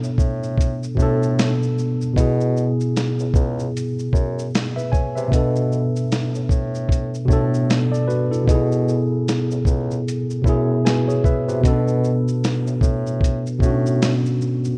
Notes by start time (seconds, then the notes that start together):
Already playing: B2 B3 D4 A4
0.03 A2, shaker
0.18 A2, kick, shaker
0.43 shaker
0.58 kick, closed hi-hat, shaker
0.83 shaker
0.95 A2 B2 B3, kick
0.99 D4 A4, shaker
1.23 shaker
1.39 snare, closed hi-hat, shaker
1.63 shaker
1.78 shaker
2.01 shaker
2.13 B2 B3, kick
2.18 E4 G#4, closed hi-hat, shaker
2.41 shaker
2.57 shaker
2.80 shaker
2.97 snare, closed hi-hat, shaker
3.19 C#2, shaker
3.34 C#2, kick, shaker
3.59 shaker
3.77 closed hi-hat, shaker
3.99 shaker
4.13 F#2, kick, shaker
4.39 shaker
4.55 snare, closed hi-hat, shaker
4.76 B4 E5, shaker
4.92 C#5 G#5, kick, shaker
5.16 C3 B4 E5, shaker
5.28 B2 B3, kick
5.32 B2 D4 A4, closed hi-hat, shaker
5.56 shaker
5.72 shaker
5.96 shaker
6.12 snare, closed hi-hat, shaker
6.35 A2, shaker
6.49 A2, kick, shaker
6.75 shaker
6.89 kick, closed hi-hat, shaker
7.14 shaker
7.26 A2 B2 B3, kick
7.30 D4 A4, shaker
7.54 shaker
7.70 snare, closed hi-hat, shaker
7.92 A4 D5, shaker
8.08 F#4 B4, shaker
8.31 E4 A4, shaker
8.44 B2 B3, kick
8.48 D#4 G#4, closed hi-hat, shaker
8.55 E4
8.72 shaker
8.88 shaker
9.28 snare, closed hi-hat, shaker
9.50 C#2, shaker
9.65 C#2, kick, shaker
9.91 shaker
10.08 closed hi-hat, shaker
10.30 shaker
10.42 F#2 B2 B3 E5, kick
10.47 E4 G#4, shaker
10.85 F#4 B4 G#5, snare, closed hi-hat, shaker
11.08 G#4 C#5, shaker
11.24 B4 E5, kick, shaker
11.47 C3 F#4 B4, shaker
11.61 B2 B3, kick
11.65 C#4 A4, closed hi-hat, shaker
11.72 D4
11.88 shaker
12.04 shaker
12.28 shaker
12.44 snare, closed hi-hat, shaker
12.66 A2, shaker
12.81 A2, kick, shaker
13.07 shaker
13.21 kick, closed hi-hat, shaker
13.47 shaker
13.59 A2 B2 B3, kick, shaker
13.63 C#4 F#4
13.70 D4
13.86 shaker
14.02 snare, closed hi-hat, shaker
14.26 shaker
14.41 shaker
14.65 shaker